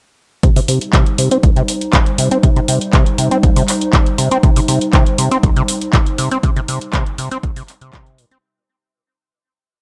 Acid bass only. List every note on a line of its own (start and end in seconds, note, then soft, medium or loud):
0.43 0.51 C3 medium
0.56 0.60 C3 medium
0.68 0.79 C3 medium
0.93 1.04 C3 medium
1.18 1.29 C3 medium
1.31 1.38 C4 loud
1.43 1.51 C2 medium
1.56 1.63 C3 medium
1.93 1.98 A#2 loud
2.18 2.29 C3 medium
2.31 2.38 C4 loud
2.43 2.51 C3 medium
2.56 2.60 C3 loud
2.68 2.79 C3 medium
2.93 3.04 C3 medium
3.18 3.29 C3 medium
3.31 3.38 C4 loud
3.43 3.51 C2 medium
3.56 3.63 C3 medium
3.93 3.98 A#2 loud
4.18 4.29 C3 medium
4.31 4.38 C4 loud
4.43 4.51 C3 medium
4.56 4.60 C3 medium
4.68 4.79 C3 medium
4.93 5.04 C3 medium
5.18 5.29 C3 medium
5.31 5.38 C4 loud
5.43 5.51 C2 medium
5.56 5.63 C3 medium
5.93 5.98 A#2 loud
6.19 6.29 C3 medium
6.31 6.38 C4 loud
6.44 6.51 C3 medium
6.57 6.60 C3 loud
6.69 6.79 C3 medium
6.93 7.04 C3 medium
7.18 7.29 C3 medium
7.31 7.38 C4 medium
7.43 7.51 C2 medium
7.56 7.63 C3 medium
7.81 7.91 C3 medium
7.93 8.20 C3 medium
8.18 8.26 A#2 medium
8.31 8.38 C4 loud